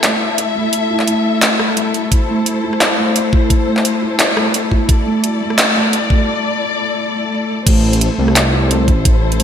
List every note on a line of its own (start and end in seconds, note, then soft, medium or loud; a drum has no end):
0.00 0.03 A3 medium
0.00 7.63 A3 medium
0.00 0.54 A3 medium
0.00 0.90 E4 medium
0.00 7.63 E4 medium
0.00 7.63 A4 medium
0.00 2.11 E5 medium
0.00 cross-stick soft
0.04 cross-stick soft
0.04 clap loud
0.04 closed hi-hat medium
0.07 cross-stick soft
0.09 cross-stick soft
0.38 closed hi-hat medium
0.55 0.72 A3 medium
0.73 closed hi-hat medium
0.90 1.07 E4 medium
0.99 clap soft
1.08 1.75 A3 medium
1.08 closed hi-hat medium
1.42 clap loud
1.42 closed hi-hat medium
1.59 cross-stick medium
1.69 cross-stick soft
1.77 2.12 A3 medium
1.77 closed hi-hat medium
1.94 closed hi-hat soft
2.12 4.88 C5 medium
2.12 kick loud
2.12 closed hi-hat medium
2.29 2.45 A3 medium
2.46 closed hi-hat medium
2.64 2.80 E4 medium
2.73 cross-stick soft
2.81 clap loud
2.81 closed hi-hat medium
2.98 3.15 A3 medium
3.16 closed hi-hat medium
3.33 3.49 E4 medium
3.33 kick loud
3.50 kick loud
3.50 closed hi-hat medium
3.67 3.84 A3 medium
3.77 clap soft
3.85 closed hi-hat medium
4.02 4.18 E4 medium
4.20 clap loud
4.20 closed hi-hat medium
4.37 4.53 A3 medium
4.37 cross-stick medium
4.46 cross-stick soft
4.54 closed hi-hat medium
4.72 4.88 E4 medium
4.72 kick medium
4.89 7.65 D5 medium
4.89 kick loud
4.89 closed hi-hat medium
5.06 5.22 A3 medium
5.24 closed hi-hat medium
5.41 5.57 A3 medium
5.50 cross-stick soft
5.58 clap loud
5.58 closed hi-hat medium
5.76 5.92 A3 medium
5.93 closed hi-hat medium
6.10 6.26 A3 medium
6.10 kick loud
7.66 8.09 A1 loud
7.66 8.17 A3 medium
7.66 9.43 A3 medium
7.66 9.43 E4 medium
7.66 9.43 A4 medium
7.66 9.43 C5 medium
7.66 kick loud
7.66 closed hi-hat medium
7.66 crash loud
7.93 closed hi-hat soft
8.01 closed hi-hat medium
8.18 8.90 C2 medium
8.18 8.35 A3 medium
8.28 cross-stick soft
8.36 clap loud
8.36 closed hi-hat medium
8.53 8.70 E4 medium
8.70 9.38 A3 medium
8.70 closed hi-hat medium
8.88 9.43 A1 medium
8.88 kick loud
8.88 closed hi-hat soft
9.05 kick loud
9.05 closed hi-hat medium
9.32 closed hi-hat soft
9.40 9.43 A3 medium
9.40 closed hi-hat medium